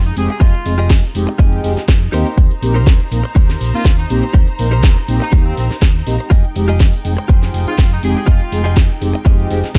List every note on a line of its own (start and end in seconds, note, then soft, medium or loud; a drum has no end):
0.00 0.10 F2 loud
0.00 2.09 G#3 medium
0.00 9.78 D#4 medium
0.00 0.39 G5 medium
0.05 0.14 D#4 medium
0.05 closed hi-hat soft
0.16 0.26 F1 loud
0.16 0.30 G#3 loud
0.16 0.30 C4 medium
0.16 0.31 D#4 medium
0.16 0.31 G4 loud
0.16 0.25 G#4 medium
0.16 open hi-hat loud
0.29 0.37 G#4 medium
0.29 muted clean electric guitar stroke soft
0.29 closed hi-hat soft
0.40 0.51 F2 loud
0.40 0.54 F4 loud
0.40 0.90 F4 loud
0.40 0.54 G4 loud
0.40 0.54 G#4 loud
0.40 0.54 D#5 loud
0.40 kick loud
0.40 closed hi-hat medium
0.54 closed hi-hat soft
0.65 0.92 F1 medium
0.65 0.74 G#3 medium
0.65 0.74 C4 medium
0.65 0.74 D#4 medium
0.65 0.74 G#4 loud
0.65 muted clean electric guitar stroke soft
0.65 open hi-hat loud
0.78 1.03 F4 medium
0.78 1.03 G4 medium
0.78 1.03 G#4 medium
0.78 1.04 D#5 loud
0.78 closed hi-hat soft
0.90 1.00 F2 medium
0.90 kick loud
0.90 snare loud
0.90 closed hi-hat loud
1.03 closed hi-hat soft
1.15 1.24 F1 medium
1.15 1.29 G#3 medium
1.15 1.29 C4 medium
1.15 1.29 D#4 medium
1.15 1.29 G4 loud
1.15 open hi-hat loud
1.27 muted clean electric guitar stroke loud
1.27 closed hi-hat soft
1.38 1.58 F2 medium
1.38 1.61 G#3 medium
1.38 1.61 C4 medium
1.38 1.61 D#4 medium
1.38 1.82 F4 medium
1.38 1.82 G4 medium
1.38 1.61 G4 loud
1.38 1.83 G#4 medium
1.38 1.83 D#5 loud
1.38 kick loud
1.38 closed hi-hat medium
1.52 closed hi-hat soft
1.63 1.73 F1 medium
1.63 1.73 G#3 loud
1.63 1.73 C4 medium
1.63 1.73 D#4 medium
1.63 1.73 G4 loud
1.63 open hi-hat loud
1.77 muted fingered electric bass stroke soft
1.77 snare soft
1.77 closed hi-hat soft
1.88 2.07 F2 loud
1.88 kick loud
1.88 snare loud
1.88 closed hi-hat medium
2.02 closed hi-hat soft
2.12 2.23 D#2 loud
2.12 2.27 A#3 loud
2.12 2.27 C4 loud
2.12 2.53 D#4 loud
2.12 2.28 D#4 medium
2.12 2.53 G4 medium
2.12 2.28 G4 loud
2.12 2.53 A#4 medium
2.12 6.27 C5 medium
2.12 2.53 C5 loud
2.12 6.27 A#5 medium
2.12 open hi-hat loud
2.26 closed hi-hat soft
2.38 2.47 D#2 medium
2.38 kick loud
2.38 closed hi-hat loud
2.51 closed hi-hat soft
2.61 2.87 A#1 medium
2.61 2.76 A#3 loud
2.61 2.76 C4 medium
2.61 2.77 D#4 medium
2.61 2.77 G4 loud
2.61 muted clean electric guitar stroke soft
2.61 open hi-hat loud
2.74 2.99 D#4 medium
2.74 3.00 G4 medium
2.74 3.00 A#4 medium
2.74 3.00 C5 loud
2.74 closed hi-hat soft
2.87 2.96 D#2 medium
2.87 kick loud
2.87 snare loud
2.87 closed hi-hat loud
3.00 closed hi-hat soft
3.11 3.21 A#1 medium
3.11 3.20 A#3 medium
3.11 3.20 C4 medium
3.11 3.21 D#4 medium
3.11 3.21 A#4 medium
3.11 open hi-hat loud
3.24 muted clean electric guitar stroke medium
3.24 closed hi-hat soft
3.35 3.54 D#2 medium
3.35 3.79 D#4 loud
3.35 3.79 G4 medium
3.35 3.80 A#4 medium
3.35 3.80 C5 loud
3.35 kick loud
3.35 closed hi-hat medium
3.49 snare soft
3.49 closed hi-hat soft
3.61 3.70 A#1 medium
3.61 open hi-hat loud
3.73 3.81 A#3 medium
3.73 3.81 C4 medium
3.73 3.82 D#4 medium
3.73 3.95 F4 medium
3.73 3.82 A#4 loud
3.73 muted fingered electric bass stroke soft
3.73 closed hi-hat soft
3.85 4.04 D#2 loud
3.85 kick loud
3.85 snare loud
3.85 closed hi-hat medium
3.98 4.07 D#4 loud
3.98 closed hi-hat soft
4.09 4.20 A#1 loud
4.09 4.24 A#3 loud
4.09 4.24 C4 medium
4.09 4.24 D#4 medium
4.09 4.24 G4 loud
4.09 open hi-hat loud
4.22 muted clean electric guitar stroke soft
4.22 closed hi-hat soft
4.33 4.44 D#2 medium
4.33 4.47 D#4 loud
4.33 4.47 G4 loud
4.33 4.48 A#4 loud
4.33 4.48 C5 loud
4.33 kick loud
4.33 closed hi-hat medium
4.47 closed hi-hat soft
4.58 4.84 A#1 medium
4.58 4.68 A#3 medium
4.58 4.68 C4 medium
4.58 4.68 D#4 medium
4.58 4.68 A#4 loud
4.58 muted clean electric guitar stroke soft
4.58 open hi-hat loud
4.71 4.96 D#4 medium
4.71 4.96 G4 medium
4.71 4.97 A#4 medium
4.71 4.97 C5 loud
4.71 closed hi-hat soft
4.84 4.93 D#2 medium
4.84 kick loud
4.84 snare loud
4.84 closed hi-hat medium
4.97 closed hi-hat soft
5.08 5.18 A#1 medium
5.08 5.22 A#3 medium
5.08 5.22 C4 medium
5.08 5.22 D#4 medium
5.08 5.23 G4 loud
5.08 open hi-hat loud
5.20 5.43 D#4 medium
5.20 muted clean electric guitar stroke medium
5.20 closed hi-hat soft
5.32 5.51 D#2 medium
5.32 5.54 A#3 medium
5.32 5.54 C4 medium
5.32 5.76 D#4 medium
5.32 5.55 D#4 medium
5.32 5.76 G4 medium
5.32 5.55 G4 loud
5.32 5.76 A#4 medium
5.32 5.76 C5 loud
5.32 kick loud
5.32 closed hi-hat medium
5.46 5.53 C4 medium
5.46 closed hi-hat soft
5.57 5.67 A#1 medium
5.57 5.66 C4 medium
5.57 open hi-hat loud
5.71 muted fingered electric bass stroke soft
5.71 snare soft
5.71 closed hi-hat soft
5.82 6.00 D#2 medium
5.82 kick loud
5.82 snare loud
5.82 closed hi-hat medium
5.95 closed hi-hat soft
6.06 6.16 A#1 medium
6.06 6.15 A#3 medium
6.06 6.15 C4 medium
6.06 6.15 D#4 medium
6.06 6.16 G4 medium
6.06 open hi-hat loud
6.19 muted clean electric guitar stroke soft
6.19 closed hi-hat soft
6.30 6.41 F2 loud
6.30 9.78 G#3 medium
6.30 6.44 F4 loud
6.30 6.44 G4 loud
6.30 6.44 G#4 loud
6.30 6.45 D#5 loud
6.30 9.78 G5 medium
6.30 kick loud
6.30 closed hi-hat medium
6.44 closed hi-hat soft
6.55 6.82 F1 medium
6.55 6.70 G#3 medium
6.55 6.70 C4 medium
6.55 6.70 D#4 medium
6.55 6.70 G4 loud
6.55 muted clean electric guitar stroke soft
6.55 open hi-hat loud
6.68 6.93 F4 medium
6.68 6.93 G4 medium
6.68 6.93 G#4 medium
6.68 6.94 D#5 loud
6.68 closed hi-hat soft
6.80 6.90 F2 medium
6.80 kick loud
6.80 snare loud
6.80 closed hi-hat medium
6.93 closed hi-hat soft
7.04 7.14 F1 medium
7.04 7.14 G#3 medium
7.04 7.14 C4 medium
7.04 7.14 D#4 medium
7.04 7.14 G#4 medium
7.04 open hi-hat loud
7.17 muted clean electric guitar stroke loud
7.17 closed hi-hat soft
7.28 7.48 F2 medium
7.28 7.72 F4 medium
7.28 7.72 G4 medium
7.28 7.73 G#4 medium
7.28 7.73 C5 loud
7.28 kick loud
7.28 closed hi-hat medium
7.43 snare soft
7.43 closed hi-hat soft
7.54 7.64 F1 medium
7.54 open hi-hat loud
7.67 7.75 G#3 medium
7.67 7.75 C4 medium
7.67 7.75 D#4 medium
7.67 7.88 F4 medium
7.67 7.75 G#4 loud
7.67 muted fingered electric bass stroke soft
7.67 closed hi-hat soft
7.78 7.97 F2 loud
7.78 kick loud
7.78 snare loud
7.78 closed hi-hat medium
7.92 8.01 D#4 loud
7.92 closed hi-hat soft
8.03 8.13 F1 loud
8.03 8.17 G#3 medium
8.03 8.17 C4 medium
8.03 8.17 D#4 medium
8.03 8.18 G4 loud
8.03 8.12 G#4 medium
8.03 open hi-hat loud
8.15 8.24 G#4 medium
8.15 muted clean electric guitar stroke soft
8.15 closed hi-hat soft
8.26 8.37 F2 loud
8.26 8.40 F4 loud
8.26 8.77 F4 loud
8.26 8.40 G4 loud
8.26 8.41 G#4 loud
8.26 8.41 D#5 loud
8.26 kick loud
8.26 closed hi-hat medium
8.41 closed hi-hat soft
8.51 8.78 F1 loud
8.51 8.61 G#3 medium
8.51 8.61 C4 medium
8.51 8.61 D#4 medium
8.51 8.61 G#4 loud
8.51 muted clean electric guitar stroke soft
8.51 open hi-hat loud
8.64 8.89 F4 loud
8.64 8.90 G4 medium
8.64 8.90 G#4 medium
8.64 8.90 D#5 loud
8.64 closed hi-hat soft
8.77 8.86 F2 medium
8.77 kick loud
8.77 snare loud
8.77 closed hi-hat loud
8.90 closed hi-hat soft
9.01 9.11 F1 medium
9.01 9.15 G#3 medium
9.01 9.15 C4 medium
9.01 9.16 D#4 medium
9.01 9.16 G4 loud
9.01 open hi-hat loud
9.13 muted clean electric guitar stroke medium
9.13 closed hi-hat soft
9.25 9.44 F2 medium
9.25 9.47 G#3 loud
9.25 9.48 C4 medium
9.25 9.48 D#4 medium
9.25 9.69 F4 medium
9.25 9.69 G4 medium
9.25 9.48 G4 loud
9.25 9.69 G#4 medium
9.25 9.70 D#5 loud
9.25 kick loud
9.25 closed hi-hat medium
9.39 closed hi-hat soft
9.50 9.60 F1 medium
9.50 9.59 G#3 loud
9.50 9.59 C4 medium
9.50 9.59 D#4 medium
9.50 9.60 G4 loud
9.50 open hi-hat loud
9.64 muted fingered electric bass stroke soft
9.64 snare soft
9.64 closed hi-hat soft
9.75 9.78 F2 loud
9.75 kick loud
9.75 snare loud
9.75 closed hi-hat medium